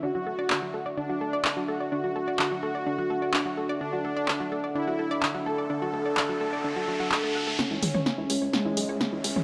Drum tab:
HH |----------------|----------------|----------------|----------------|
CP |----x-------x---|----x-------x---|----x-------x---|----x-------x---|
SD |----------------|----------------|----------------|----------------|
T2 |----------------|----------------|----------------|----------------|

HH |--o---o---o---o-|
CP |----------------|
SD |o---o---o---o---|
T2 |--oo-----------o|